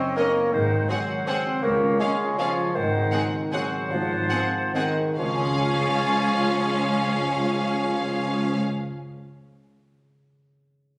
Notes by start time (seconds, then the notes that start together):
Already playing: F#2 C#3 C4 C#4 C5 C#5 D#5
0.00 D#4
0.16 A#3 C#4 A#4 C#5 D#5
0.35 D#4
0.53 G#1 G#2 D#3 D#4 C5 F#5
0.71 D#3
0.89 F#3 C4 F#4 G#4 C5 F#5
1.09 F#4
1.27 C4 G#4 C5 F#5
1.46 F#4
1.63 C#2 C#3 A#3 A#4 C#5 F5
1.82 G#3
2.00 G#3 C#4 G#4 C#5 F5
2.20 F4
2.38 F3 C#4 F4 G#4 C#5 F5
2.58 F4
2.74 G#1 G#2 D#3 D#4 C5 F#5
2.94 D#3
3.13 C4 G#4 F#5
3.33 F#4
3.52 F#3 C4 F#4 G#4 C5 F#5
3.73 F#4
3.91 G#1 G#2 F3 F4
4.11 D#3
4.30 C4 G#4 F#5
4.74 D#3 C4 D#4 G#4 C5 F#5
4.97 F#4
5.18 C#2 C#3 F3 C#4 F4 G#4 C#5 F5 G#5
5.26 C#4
5.33 F4
5.40 G#4
5.47 F5